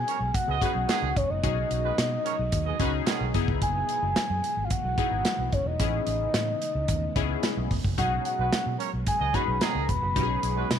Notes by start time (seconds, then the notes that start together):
Already playing: B2 F#3 G#3 B3 F#4 G#5
0.07 C#4 A#4 C#5, closed hi-hat
0.20 B1
0.34 F#5, kick, closed hi-hat
0.48 C#2 B3 G#4 D#5
0.61 G#3 C#4 D#4 F#4 G#4 B4, kick, closed hi-hat
0.75 B1
0.89 D#3 B3 G#4, snare, closed hi-hat
1.02 C#2
1.16 E1 C#5, kick, closed hi-hat
1.30 F#1 D#5
1.43 B1 C#4 D#4 F#4 G#4, kick, closed hi-hat
1.71 B1, closed hi-hat
1.84 G#3 F#4 B4
1.98 B2, snare, closed hi-hat
2.25 C#4 A#4 C#5, closed hi-hat
2.39 B1
2.52 D#2, kick, closed hi-hat
2.66 B3 G#4 D#5
2.79 C#2 G#3 C#4 D#4 F#4 G#4 B4, kick, closed hi-hat
3.07 D#3 B3 G#4, snare, closed hi-hat
3.21 B1
3.34 F#1 E3 B3 D#4 E4 G#4, kick, closed hi-hat
3.48 C#2, kick
3.62 F#1 G#5, kick, closed hi-hat
3.89 closed hi-hat
4.02 F#1
4.16 snare, closed hi-hat
4.30 F#2
4.44 closed hi-hat
4.57 G#1
4.64 F5
4.70 F#5, kick, closed hi-hat
4.84 B1
4.98 B3 D#4 E4 G#4, kick, closed hi-hat
5.11 G#1
5.25 snare, closed hi-hat
5.38 B1
5.52 F#1 C#5, kick, closed hi-hat
5.66 E1 D#5
5.79 A1 C#3 G#3 A3 B3 C#4 E4 G#4, kick, closed hi-hat
6.07 A1, closed hi-hat
6.34 A2, snare, closed hi-hat
6.62 closed hi-hat
6.75 C#2
6.88 D#2, kick, closed hi-hat
7.16 C#2 B3 C#4 E4 G#4, kick, closed hi-hat
7.43 snare, closed hi-hat
7.57 B1
7.71 E1, kick, open hi-hat
7.84 F#1, kick
7.98 B1 B2 F#3 C#4 D#4 F#4 G#4 F#5, kick, closed hi-hat
8.25 F#5, closed hi-hat
8.39 B1 G#3 F#4 B4
8.53 snare, closed hi-hat
8.66 B2
8.79 C#4 A#4 C#5, closed hi-hat
8.94 B1
9.07 G#5, kick, closed hi-hat
9.20 C#2 B3 G#4 D#5
9.34 G#3 C#4 D#4 F#4 G#4 B4 B5, kick, closed hi-hat
9.48 B1
9.61 D#3 B3 G#4 A#5, snare, closed hi-hat
9.75 C#2
9.88 E1 B5, kick, closed hi-hat
10.02 F#1
10.16 B1 C#4 D#4 F#4 G4, kick, closed hi-hat
10.23 G#4
10.43 B1, closed hi-hat
10.57 G#3 F#4 B4
10.70 B2, snare, closed hi-hat